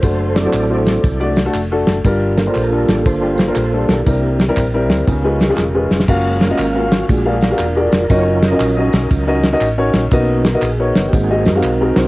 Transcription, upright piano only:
0.03 0.34 A3 medium
0.03 0.35 D4 medium
0.03 0.35 F#4 medium
0.03 0.35 C5 medium
0.45 0.58 A3 medium
0.45 0.58 D4 medium
0.45 0.58 F#4 medium
0.45 0.58 C5 medium
0.69 1.00 A3 medium
0.69 1.00 D4 medium
0.69 1.00 F#4 medium
0.69 1.00 C5 medium
1.20 1.39 A3 medium
1.20 1.39 D4 medium
1.20 1.39 F#4 medium
1.20 1.40 D5 loud
1.45 1.59 A3 medium
1.45 1.59 D4 medium
1.45 1.59 F#4 medium
1.45 1.59 A4 loud
1.71 1.96 A3 medium
1.71 1.96 D4 medium
1.71 1.96 F#4 medium
1.71 1.96 A4 loud
2.05 2.85 G2 medium
2.05 2.36 G3 medium
2.05 2.37 D4 medium
2.05 2.37 F4 medium
2.05 2.37 A#4 medium
2.46 2.60 G3 medium
2.46 2.60 D4 medium
2.46 2.60 F4 medium
2.46 2.60 C5 medium
2.72 3.02 G3 medium
2.72 3.02 D4 medium
2.72 3.02 F4 medium
2.72 3.02 A4 medium
3.22 3.41 G3 medium
3.22 3.41 D4 medium
3.22 3.41 F4 medium
3.22 3.41 G4 medium
3.47 3.60 G3 medium
3.47 3.61 D4 medium
3.47 3.61 F4 medium
3.47 3.61 A#4 medium
3.73 3.97 G3 medium
3.73 3.97 D4 medium
3.73 3.97 F4 medium
3.73 3.98 A4 medium
4.06 4.86 C3 medium
4.06 4.38 G3 medium
4.06 4.38 C4 medium
4.06 4.38 E4 medium
4.06 4.38 A#4 medium
4.48 4.61 G3 medium
4.48 4.62 C4 medium
4.48 4.62 E4 medium
4.48 4.62 A#4 loud
4.74 5.03 G3 medium
4.74 5.03 C4 medium
4.74 5.04 E4 medium
4.74 5.04 A#4 medium
5.08 5.87 C#3 medium
5.24 5.43 G#3 medium
5.24 5.43 C#4 medium
5.24 5.43 F4 medium
5.24 5.43 B4 medium
5.49 5.62 G#3 medium
5.49 5.62 C#4 medium
5.49 5.63 F4 medium
5.49 5.63 G#4 medium
5.74 5.99 G#3 medium
5.74 5.99 C#4 medium
5.74 5.99 F4 medium
5.74 5.99 B4 medium
6.08 6.40 C#4 medium
6.08 6.40 F4 medium
6.08 6.40 F#4 medium
6.08 6.40 A#4 medium
6.08 6.40 F5 loud
6.50 6.63 C#4 medium
6.50 6.63 F4 medium
6.50 6.63 F#4 medium
6.50 6.63 A#4 medium
6.50 6.63 D#5 medium
6.75 7.05 C#4 medium
6.75 7.05 F4 medium
6.75 7.05 F#4 medium
6.75 7.05 A#4 medium
6.75 7.05 F5 medium
7.09 7.89 A#2 medium
7.25 7.44 D4 medium
7.25 7.44 F#4 medium
7.25 7.44 G#4 medium
7.25 7.45 A#4 medium
7.25 7.44 F5 medium
7.51 7.64 D4 medium
7.51 7.64 F#4 medium
7.51 7.64 G#4 medium
7.51 7.64 A#4 medium
7.51 7.64 F5 medium
7.76 8.00 D4 medium
7.76 8.01 F#4 medium
7.76 8.01 G#4 medium
7.76 8.01 A#4 medium
7.76 8.01 D5 medium
8.10 8.41 C#4 medium
8.10 8.42 D#4 medium
8.10 8.42 F#4 medium
8.10 8.42 A#4 medium
8.10 8.42 D#5 medium
8.52 8.65 C#4 medium
8.52 8.65 D#4 medium
8.52 8.65 F#4 medium
8.52 8.65 A#4 medium
8.52 8.65 D#5 medium
8.77 9.07 C#4 medium
8.77 9.07 D#4 medium
8.77 9.07 F#4 medium
8.77 9.07 A#4 medium
8.77 9.07 D#5 medium
9.27 9.46 C#4 medium
9.27 9.46 D#4 medium
9.27 9.46 F#4 medium
9.27 9.46 A#4 medium
9.27 9.46 D#5 loud
9.52 9.66 C#4 medium
9.52 9.66 D#4 medium
9.52 9.66 F#4 medium
9.52 9.66 A#4 medium
9.52 9.66 D#5 loud
9.78 10.02 C#4 medium
9.78 10.02 D#4 medium
9.78 10.02 F#4 medium
9.78 10.02 A#4 medium
9.78 10.02 C#5 loud
10.12 10.92 B2 medium
10.12 10.43 B3 medium
10.12 10.43 D#4 medium
10.12 10.44 F#4 medium
10.12 10.44 A#4 medium
10.12 10.44 D#5 loud
10.54 10.67 B3 medium
10.54 10.67 D#4 medium
10.54 10.67 F#4 medium
10.54 10.67 A#4 medium
10.54 10.67 D#5 medium
10.79 11.09 B3 medium
10.79 11.09 D#4 medium
10.79 11.09 F#4 medium
10.79 11.09 A#4 medium
10.79 11.09 C#5 medium
11.13 11.93 G#2 medium
11.30 11.48 C4 medium
11.30 11.48 D#4 medium
11.30 11.49 F#4 medium
11.30 11.49 G#4 medium
11.30 11.49 D#5 medium
11.55 11.68 C4 medium
11.55 11.68 D#4 medium
11.55 11.68 F#4 medium
11.55 11.68 G#4 medium
11.55 11.68 F5 medium
11.81 12.05 C4 medium
11.81 12.05 D#4 medium
11.81 12.05 F#4 medium
11.81 12.05 G#4 medium
11.81 12.05 A#4 medium

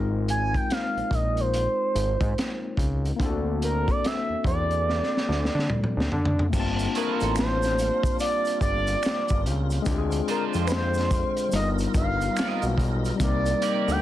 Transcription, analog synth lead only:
0.30 0.58 G#5 loud
0.56 0.73 G5 medium
0.72 1.16 F5 loud
1.14 1.42 D#5 loud
1.40 2.79 C5 medium
3.64 3.92 A#4 medium
3.90 4.08 D5 medium
4.06 4.46 E5 loud
4.47 6.08 D5 loud
6.97 7.35 A#4 medium
7.38 8.17 C5 loud
8.20 8.59 D5 loud
8.62 9.41 D5 loud
10.30 10.44 A#4 medium
10.66 10.73 B4 medium
10.72 11.54 C5 medium
11.55 11.69 D#5 loud
11.96 12.75 F5 loud
13.23 13.93 D5 loud
13.91 14.02 G5 medium

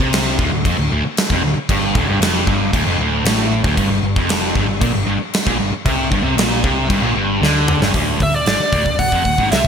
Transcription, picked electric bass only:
0.00 0.36 C2 loud
0.39 0.51 D1 loud
0.52 0.64 D1 medium
0.65 0.77 F1 loud
0.77 0.89 D1 medium
0.91 1.03 D1 loud
1.04 muted picked electric bass stroke soft
1.31 1.42 F1 medium
1.43 1.55 D1 medium
1.56 muted picked electric bass stroke soft
1.69 1.93 G1 medium
1.95 2.07 D1 loud
2.07 2.20 G1 medium
2.21 2.45 F1 medium
2.48 2.71 G1 loud
2.74 2.85 D1 medium
2.86 2.98 F1 loud
2.99 3.23 D1 loud
3.24 3.61 A1 loud
3.64 3.76 D1 loud
3.78 3.90 G1 medium
3.90 4.02 G1 medium
4.02 4.15 G1 medium
4.17 4.53 F1 loud
4.55 4.67 G1 loud
4.67 4.80 G1 medium
4.82 4.93 A#1 loud
4.94 5.05 G1 medium
5.06 5.18 G1 loud
5.19 muted picked electric bass stroke soft
5.47 5.58 A#1 loud
5.59 5.71 G1 medium
5.72 muted picked electric bass stroke soft
5.86 6.10 C2 medium
6.12 6.23 G1 loud
6.23 6.35 C2 loud
6.36 6.61 A#1 loud
6.64 6.88 C2 loud
6.90 7.00 G1 medium
7.01 7.13 A#1 medium
7.14 7.39 G1 loud
7.41 7.78 D2 loud
7.80 7.93 G1 medium
7.94 8.18 D1 medium
8.20 8.45 D1 medium
8.46 8.58 G#1 medium
8.73 8.85 D1 medium
8.86 8.98 D1 medium
9.00 9.11 D1 medium
9.13 9.24 F1 medium
9.25 9.37 D1 medium
9.38 9.50 G#1 medium
9.52 9.64 C2 medium

